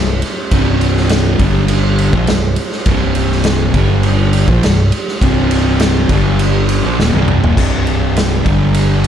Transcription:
0.00 0.21 C1 medium
0.00 0.18 C2 medium
0.00 0.18 G2 medium
0.22 ride medium
0.51 1.36 C1 medium
0.51 1.40 C2 medium
0.51 1.40 G2 loud
0.51 1.40 C3 loud
0.51 kick loud
0.51 ride loud
0.81 ride medium
0.97 snare soft
1.09 snare loud
1.09 ride loud
1.39 2.09 G1 loud
1.39 2.13 G2 medium
1.39 2.14 D3 medium
1.39 2.14 G3 medium
1.39 kick loud
1.39 ride medium
1.68 ride loud
1.99 ride medium
2.13 2.27 A#1 loud
2.13 2.28 A#2 loud
2.13 2.29 F3 loud
2.13 kick loud
2.27 2.56 C1 medium
2.27 2.52 C2 medium
2.27 2.53 G2 medium
2.27 snare loud
2.27 ride loud
2.56 ride medium
2.72 snare soft
2.86 3.71 C1 loud
2.86 3.75 C2 loud
2.86 3.74 G2 loud
2.86 3.75 C3 loud
2.86 kick loud
2.86 ride loud
3.15 ride medium
3.32 snare soft
3.44 snare loud
3.44 ride loud
3.74 4.45 G1 loud
3.74 4.48 G2 medium
3.74 4.49 D3 medium
3.74 4.49 G3 loud
3.74 kick loud
3.74 ride medium
4.03 ride loud
4.33 ride medium
4.48 4.62 A#1 medium
4.48 4.63 A#2 medium
4.48 4.63 F3 loud
4.48 kick loud
4.63 4.91 C1 medium
4.63 4.88 C2 medium
4.63 4.88 G2 medium
4.63 snare loud
4.63 ride loud
4.92 ride medium
5.08 snare soft
5.22 6.06 C1 medium
5.22 6.10 C2 loud
5.22 6.10 G2 medium
5.22 6.10 C3 loud
5.22 kick loud
5.22 ride loud
5.51 ride medium
5.80 snare loud
5.80 ride loud
6.09 6.80 G1 loud
6.09 6.84 G2 medium
6.09 6.84 D3 medium
6.09 6.84 G3 loud
6.09 kick loud
6.09 ride medium
6.39 ride loud
6.69 ride medium
6.85 6.99 A#1 loud
6.85 6.99 A#2 loud
6.85 6.99 F3 loud
6.99 7.13 D#1 medium
6.99 7.13 D#2 medium
6.99 7.13 A#2 loud
6.99 snare medium
7.13 7.41 C1 loud
7.13 7.42 C2 medium
7.13 7.43 G2 loud
7.13 7.43 C3 loud
7.13 high tom medium
7.28 mid tom medium
7.42 7.57 D#1 medium
7.42 7.56 D#2 loud
7.42 7.57 A#2 loud
7.42 floor tom medium
7.57 8.42 C1 medium
7.57 8.45 C2 loud
7.57 8.44 G2 loud
7.57 8.45 C3 loud
7.57 kick loud
7.57 crash loud
7.87 ride medium
8.16 snare loud
8.16 ride medium
8.45 9.07 G1 medium
8.45 9.07 G2 medium
8.45 9.07 D3 medium
8.45 9.07 G3 medium
8.45 kick loud
8.45 ride medium
8.74 ride medium

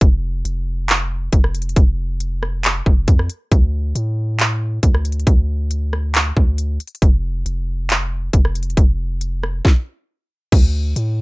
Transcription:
0.01 0.43 F1 loud
0.01 kick loud
0.01 closed hi-hat medium
0.45 1.29 F1 loud
0.45 closed hi-hat medium
0.89 clap loud
0.89 closed hi-hat medium
1.33 1.75 F1 loud
1.33 kick loud
1.33 closed hi-hat medium
1.44 cross-stick medium
1.55 closed hi-hat medium
1.62 closed hi-hat medium
1.69 closed hi-hat medium
1.76 2.82 F1 loud
1.76 kick loud
1.76 closed hi-hat medium
2.20 closed hi-hat medium
2.43 cross-stick medium
2.64 clap loud
2.64 closed hi-hat medium
2.86 3.07 F1 loud
2.86 kick loud
3.08 3.29 F2 loud
3.08 kick medium
3.08 closed hi-hat medium
3.19 cross-stick medium
3.30 closed hi-hat medium
3.52 3.94 D2 loud
3.52 kick loud
3.52 closed hi-hat medium
3.95 4.79 A2 loud
3.95 closed hi-hat medium
4.39 clap loud
4.39 closed hi-hat medium
4.83 5.25 D2 loud
4.83 kick loud
4.83 closed hi-hat medium
4.95 cross-stick medium
5.05 closed hi-hat medium
5.12 closed hi-hat medium
5.20 closed hi-hat medium
5.27 6.32 D2 loud
5.27 kick loud
5.27 closed hi-hat medium
5.71 closed hi-hat medium
5.93 cross-stick medium
6.14 clap loud
6.14 closed hi-hat medium
6.37 6.79 D2 loud
6.37 kick medium
6.58 closed hi-hat medium
6.80 closed hi-hat medium
6.87 closed hi-hat medium
6.95 closed hi-hat medium
7.02 7.44 F1 loud
7.02 kick loud
7.02 closed hi-hat medium
7.46 8.30 F1 loud
7.46 closed hi-hat medium
7.90 clap loud
7.90 closed hi-hat medium
8.33 8.75 F1 loud
8.33 kick loud
8.33 closed hi-hat medium
8.45 cross-stick medium
8.55 closed hi-hat medium
8.63 closed hi-hat medium
8.70 closed hi-hat medium
8.77 9.61 F1 loud
8.77 kick loud
8.77 closed hi-hat medium
9.21 closed hi-hat medium
9.43 cross-stick medium
9.65 kick loud
9.65 snare medium
10.52 10.94 D2 loud
10.52 kick loud
10.52 closed hi-hat medium
10.52 crash loud
10.96 11.21 A2 loud
10.96 closed hi-hat medium

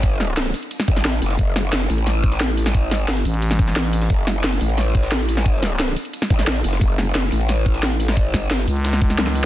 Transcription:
0.00 0.53 A1 medium
0.00 kick loud
0.00 closed hi-hat loud
0.00 ride medium
0.20 snare medium
0.20 closed hi-hat medium
0.20 ride medium
0.37 snare loud
0.37 closed hi-hat loud
0.37 ride medium
0.46 snare medium
0.54 open hi-hat medium
0.54 ride medium
0.63 closed hi-hat soft
0.71 closed hi-hat medium
0.71 ride medium
0.80 snare medium
0.88 1.21 A1 loud
0.88 kick loud
0.88 closed hi-hat medium
0.88 ride medium
0.96 snare soft
0.96 closed hi-hat soft
1.05 snare loud
1.05 closed hi-hat loud
1.05 ride medium
1.13 closed hi-hat soft
1.22 1.37 F#1 loud
1.22 open hi-hat medium
1.22 ride medium
1.30 snare soft
1.39 1.88 F#1 loud
1.39 kick loud
1.39 closed hi-hat medium
1.39 ride loud
1.56 snare medium
1.56 closed hi-hat medium
1.56 ride medium
1.73 snare loud
1.73 closed hi-hat loud
1.73 ride medium
1.81 snare medium
1.90 2.84 A1 loud
1.90 open hi-hat medium
1.90 ride medium
1.98 closed hi-hat soft
1.98 ride soft
2.07 snare soft
2.07 closed hi-hat medium
2.07 ride medium
2.24 kick loud
2.24 closed hi-hat medium
2.24 ride medium
2.32 snare soft
2.32 closed hi-hat soft
2.41 snare loud
2.41 closed hi-hat medium
2.41 ride medium
2.49 closed hi-hat soft
2.57 open hi-hat medium
2.57 ride medium
2.66 snare medium
2.74 kick loud
2.74 closed hi-hat medium
2.74 ride medium
2.84 3.11 G#1 loud
2.91 snare medium
2.91 closed hi-hat medium
2.91 ride medium
3.08 3.24 G1 loud
3.08 snare loud
3.08 closed hi-hat medium
3.08 ride medium
3.17 snare medium
3.25 4.09 A1 loud
3.25 open hi-hat medium
3.25 ride medium
3.34 closed hi-hat soft
3.42 closed hi-hat medium
3.42 ride medium
3.51 snare soft
3.59 kick loud
3.59 closed hi-hat medium
3.59 ride medium
3.68 snare soft
3.68 closed hi-hat soft
3.76 snare loud
3.76 closed hi-hat medium
3.76 ride medium
3.85 closed hi-hat soft
3.93 open hi-hat medium
3.93 ride medium
4.02 snare soft
4.10 4.59 F#1 loud
4.10 kick loud
4.10 closed hi-hat medium
4.10 ride loud
4.27 snare medium
4.27 closed hi-hat medium
4.27 ride medium
4.44 snare loud
4.44 closed hi-hat medium
4.44 ride medium
4.52 snare soft
4.61 5.95 A1 loud
4.61 open hi-hat medium
4.61 ride medium
4.69 closed hi-hat soft
4.69 ride soft
4.78 snare soft
4.78 closed hi-hat medium
4.78 ride loud
4.95 kick loud
4.95 closed hi-hat medium
4.95 ride medium
5.03 snare soft
5.03 closed hi-hat soft
5.12 snare loud
5.12 closed hi-hat medium
5.12 ride medium
5.20 closed hi-hat soft
5.29 open hi-hat medium
5.29 ride medium
5.37 snare medium
5.46 kick loud
5.46 closed hi-hat medium
5.46 ride medium
5.63 snare medium
5.63 closed hi-hat medium
5.63 ride medium
5.79 snare loud
5.79 closed hi-hat loud
5.79 ride medium
5.88 snare medium
5.96 open hi-hat medium
5.96 ride medium
6.05 closed hi-hat soft
6.13 closed hi-hat loud
6.13 ride medium
6.22 snare soft
6.30 6.63 A1 loud
6.30 kick loud
6.30 closed hi-hat medium
6.30 ride medium
6.39 snare soft
6.39 closed hi-hat soft
6.47 snare loud
6.47 closed hi-hat medium
6.47 ride medium
6.56 closed hi-hat soft
6.64 6.80 F#1 loud
6.64 open hi-hat medium
6.64 ride medium
6.73 snare soft
6.81 7.31 F#1 loud
6.81 kick loud
6.81 closed hi-hat loud
6.81 ride loud
6.98 snare medium
6.98 closed hi-hat medium
6.98 ride medium
7.15 snare loud
7.15 closed hi-hat loud
7.15 ride medium
7.24 snare soft
7.32 8.26 A1 loud
7.32 open hi-hat medium
7.32 ride medium
7.41 closed hi-hat soft
7.41 ride soft
7.49 snare soft
7.49 closed hi-hat loud
7.49 ride medium
7.66 kick loud
7.66 closed hi-hat medium
7.66 ride medium
7.74 snare soft
7.74 closed hi-hat soft
7.83 snare loud
7.83 closed hi-hat loud
7.83 ride medium
7.91 closed hi-hat soft
8.00 open hi-hat medium
8.00 ride medium
8.08 snare medium
8.17 kick loud
8.17 closed hi-hat loud
8.17 ride medium
8.26 8.53 G#1 loud
8.34 kick medium
8.34 snare medium
8.34 closed hi-hat medium
8.34 ride medium
8.51 8.66 G1 loud
8.51 snare loud
8.51 closed hi-hat medium
8.51 ride medium
8.59 snare medium
8.68 9.46 C#2 loud
8.68 open hi-hat medium
8.68 ride medium
8.76 closed hi-hat soft
8.85 snare loud
8.85 closed hi-hat loud
8.85 ride medium
8.93 snare soft
9.02 kick loud
9.02 closed hi-hat medium
9.02 ride medium
9.10 snare soft
9.10 closed hi-hat soft
9.10 ride soft
9.18 snare loud
9.18 closed hi-hat loud
9.18 high tom medium
9.18 ride medium
9.27 snare medium
9.27 closed hi-hat soft
9.35 open hi-hat medium
9.35 ride medium

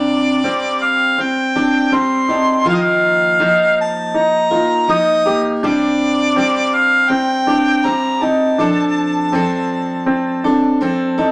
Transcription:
0.00 0.44 C3 medium
0.00 0.42 G3 medium
0.00 0.44 C4 medium
0.00 0.43 D4 medium
0.00 0.44 D4 medium
0.00 0.45 G4 medium
0.00 0.85 D5 medium
0.44 1.55 G3 medium
0.44 1.17 C4 medium
0.44 1.56 C4 medium
0.44 1.56 D4 medium
0.44 1.55 G4 medium
0.83 1.22 F5 medium
1.18 1.55 C4 medium
1.18 1.96 G5 medium
1.55 1.92 C4 soft
1.55 1.92 D4 medium
1.55 1.93 G4 medium
1.92 2.29 G3 medium
1.92 2.29 C4 medium
1.92 2.30 C4 medium
1.92 2.29 D4 medium
1.92 2.28 G4 medium
1.92 2.68 C6 loud
2.29 2.66 C4 soft
2.29 2.66 D4 soft
2.29 2.66 D#4 medium
2.29 2.66 G4 medium
2.65 3.40 D#3 medium
2.65 3.39 F3 medium
2.65 3.40 A#3 medium
2.65 3.41 D#4 medium
2.65 3.39 F4 medium
2.65 3.41 A#4 medium
2.65 2.76 F5 medium
2.75 2.83 D#5 medium
2.82 3.79 F5 medium
3.40 4.52 F3 medium
3.40 4.52 A#3 medium
3.40 4.13 D#4 medium
3.40 4.51 D#4 medium
3.40 4.49 A#4 medium
3.81 4.18 A5 medium
4.14 4.51 D#4 medium
4.14 4.93 A#5 loud
4.51 4.88 A#3 soft
4.51 4.88 D#4 medium
4.51 4.88 F4 medium
4.51 4.88 A#4 medium
4.88 5.25 F3 medium
4.88 5.26 A#3 medium
4.88 5.25 D#4 medium
4.88 5.26 D#4 medium
4.88 5.25 A#4 medium
4.88 5.48 D#6 loud
5.26 5.64 A#3 soft
5.26 5.64 D#4 soft
5.26 5.62 G4 medium
5.26 5.63 A#4 medium
5.63 6.37 C3 medium
5.63 6.35 G3 medium
5.63 6.37 C4 medium
5.63 6.36 D4 medium
5.63 6.37 D4 medium
5.63 6.37 G4 medium
5.63 6.76 D5 medium
6.36 7.48 G3 medium
6.36 7.08 C4 medium
6.36 7.50 C4 medium
6.36 7.49 D4 medium
6.36 7.47 G4 medium
6.75 7.11 F5 loud
7.10 7.47 C4 medium
7.10 7.87 G5 loud
7.47 7.84 C4 soft
7.47 7.84 D4 medium
7.47 7.85 D4 medium
7.47 7.85 G4 medium
7.84 8.22 G3 medium
7.84 8.21 C4 medium
7.84 8.22 C4 medium
7.84 8.21 D4 medium
7.84 8.19 G4 medium
7.84 8.24 A#5 medium
8.21 8.59 C4 soft
8.21 8.59 D4 soft
8.21 8.58 D#4 medium
8.21 8.59 G4 medium
8.21 10.81 A5 medium
8.58 9.32 F3 medium
8.58 9.33 C4 medium
8.58 9.31 D4 medium
8.58 9.34 D4 medium
8.58 9.34 A4 medium
9.32 10.44 F3 medium
9.32 10.05 C4 medium
9.32 10.45 C4 medium
9.32 10.45 D4 medium
9.32 10.43 A4 medium
10.06 10.43 C4 medium
10.44 10.80 C4 medium
10.44 10.81 D4 medium
10.44 10.81 A4 medium
10.81 11.18 F3 medium
10.81 11.18 C4 medium
10.81 11.19 C4 medium
10.81 11.17 D4 medium
10.81 11.17 A4 medium
11.18 11.32 C4 soft
11.18 11.32 D4 medium
11.18 11.32 D#4 medium
11.18 11.32 A4 medium

